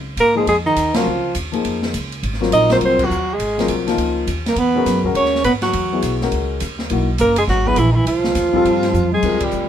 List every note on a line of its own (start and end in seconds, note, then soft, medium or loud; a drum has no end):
0.00 0.16 C#2 medium
0.17 0.46 G#2 medium
0.17 0.36 A#3 medium
0.17 0.36 A#4 loud
0.17 hi-hat pedal soft
0.17 ride medium
0.35 0.46 F3 medium
0.35 0.47 G#3 medium
0.35 0.46 A#3 medium
0.35 0.46 D#4 medium
0.35 0.46 G#4 medium
0.35 0.47 G#4 medium
0.47 0.75 F2 medium
0.47 0.56 G#3 medium
0.47 0.57 G#4 medium
0.47 ride medium
0.65 0.95 D#3 medium
0.65 0.98 D#4 medium
0.76 1.05 D#2 medium
0.76 hi-hat pedal medium
0.76 ride medium
0.93 1.34 F3 medium
0.93 1.05 F#3 medium
0.93 1.05 C4 medium
0.93 1.05 F4 medium
0.93 1.36 F4 medium
0.93 1.06 A#4 medium
0.93 snare medium
0.93 ride medium
1.06 1.34 C#2 medium
1.35 1.63 D#2 medium
1.35 hi-hat pedal medium
1.35 ride medium
1.52 1.91 F3 medium
1.52 1.91 A#3 medium
1.52 1.92 D#4 medium
1.52 1.92 G#4 medium
1.52 ride soft
1.64 1.93 F2 medium
1.64 ride medium
1.82 snare medium
1.94 2.22 C#2 medium
1.94 hi-hat pedal medium
1.94 ride medium
2.12 ride soft
2.23 2.51 G#1 medium
2.23 ride medium
2.33 snare soft
2.41 2.68 F#3 medium
2.41 2.68 C4 medium
2.41 2.69 F4 medium
2.41 2.69 A#4 medium
2.41 snare soft
2.52 2.80 A#1 medium
2.52 2.70 D#4 medium
2.52 2.70 D#5 loud
2.52 hi-hat pedal medium
2.52 ride medium
2.69 3.08 F#3 medium
2.69 3.08 C4 medium
2.69 3.09 F4 medium
2.69 3.09 A#4 medium
2.69 2.77 C5 medium
2.69 snare medium
2.69 ride soft
2.75 2.79 C4 medium
2.81 3.09 C2 medium
2.81 3.07 C4 medium
2.81 ride medium
2.85 3.06 C5 loud
2.99 kick medium
2.99 crash medium
3.05 3.36 F#3 medium
3.05 3.35 F#4 medium
3.10 3.38 D#2 medium
3.10 hi-hat pedal soft
3.33 3.72 G#3 medium
3.33 3.72 G#4 medium
3.38 3.68 G#1 medium
3.38 ride medium
3.58 3.86 F#3 medium
3.58 3.86 C4 medium
3.58 3.86 F4 medium
3.58 3.87 A#4 medium
3.58 snare soft
3.58 ride soft
3.68 3.96 C2 medium
3.68 hi-hat pedal soft
3.68 ride medium
3.87 4.25 F3 medium
3.87 4.26 A#3 medium
3.87 4.26 D#4 medium
3.87 4.26 F4 medium
3.87 snare soft
3.87 ride soft
3.97 4.26 C#2 medium
3.97 ride medium
4.27 4.55 D#2 medium
4.27 hi-hat pedal medium
4.27 ride medium
4.46 4.57 A#3 medium
4.46 4.58 A#4 medium
4.46 snare medium
4.46 ride soft
4.55 4.85 E2 medium
4.55 5.02 B3 medium
4.55 ride medium
4.60 5.03 B4 medium
4.75 5.03 G#3 medium
4.75 5.03 C#4 medium
4.75 5.03 F#4 medium
4.75 5.04 A#4 medium
4.86 5.14 F#2 medium
4.86 snare soft
4.86 hi-hat pedal medium
4.86 ride medium
5.04 5.43 G#3 medium
5.04 5.43 C#4 medium
5.04 5.43 F#4 medium
5.04 5.43 A#4 medium
5.04 kick medium
5.14 5.43 D#2 medium
5.14 5.44 C#4 medium
5.14 5.43 C#5 loud
5.14 ride medium
5.25 snare soft
5.35 snare soft
5.44 5.73 G#2 medium
5.44 5.53 B3 medium
5.44 5.53 B4 medium
5.44 hi-hat pedal soft
5.44 ride medium
5.62 6.17 F#3 medium
5.62 6.17 F#4 medium
5.62 snare soft
5.62 ride soft
5.73 6.02 E2 medium
5.73 ride medium
5.92 6.20 F#3 medium
5.92 6.20 B3 medium
5.92 6.20 E4 medium
5.92 6.21 G#4 medium
6.02 6.31 B1 medium
6.02 hi-hat pedal soft
6.02 ride medium
6.21 6.59 G#3 medium
6.21 6.60 C#4 medium
6.21 6.60 F#4 medium
6.21 6.60 A#4 medium
6.21 snare soft
6.32 6.60 C#2 medium
6.32 ride medium
6.60 6.90 D#2 medium
6.60 hi-hat pedal medium
6.60 ride medium
6.79 snare soft
6.90 7.19 B1 medium
6.90 7.07 E3 medium
6.90 7.07 A#3 medium
6.90 7.08 D#4 soft
6.90 7.08 F#4 medium
6.90 ride medium
7.18 7.47 F#1 medium
7.18 7.37 A#3 medium
7.18 7.37 A#4 loud
7.18 hi-hat pedal soft
7.18 ride medium
7.36 7.44 G#3 medium
7.36 7.43 G#4 medium
7.36 ride medium
7.47 7.76 G#1 medium
7.47 7.70 F#3 medium
7.47 7.69 F#4 medium
7.47 snare soft
7.66 7.76 F#3 medium
7.66 7.77 B3 medium
7.66 7.81 B3 medium
7.66 7.77 E4 medium
7.66 7.77 G#4 medium
7.66 7.80 B4 loud
7.66 kick medium
7.76 8.05 A#1 medium
7.76 7.92 E3 medium
7.76 7.91 E4 medium
7.76 hi-hat pedal soft
7.76 ride medium
7.92 7.99 D#3 soft
7.92 7.97 D#4 medium
7.92 8.07 E4 medium
7.97 8.08 E3 medium
8.06 8.34 C2 medium
8.06 9.10 F3 medium
8.06 9.09 F4 medium
8.06 ride medium
8.24 snare medium
8.35 8.64 D#2 medium
8.35 snare soft
8.35 hi-hat pedal medium
8.35 ride medium
8.53 8.92 G3 medium
8.53 8.92 C4 medium
8.53 8.93 F4 medium
8.53 8.93 A4 medium
8.53 kick medium
8.64 8.93 G2 medium
8.64 ride medium
8.83 snare soft
8.83 ride soft
8.93 9.22 F2 medium
8.93 hi-hat pedal medium
8.93 high tom soft
9.12 9.42 G#3 medium
9.12 9.46 G#4 medium
9.12 high tom medium
9.22 9.52 D#2 medium
9.22 9.68 G3 medium
9.22 9.68 C4 soft
9.22 9.68 F4 medium
9.22 9.68 A#4 medium
9.22 kick medium
9.22 crash medium
9.40 9.69 G3 medium
9.40 kick medium
9.40 ride medium
9.45 9.69 G4 medium
9.51 9.69 D2 medium
9.51 hi-hat pedal soft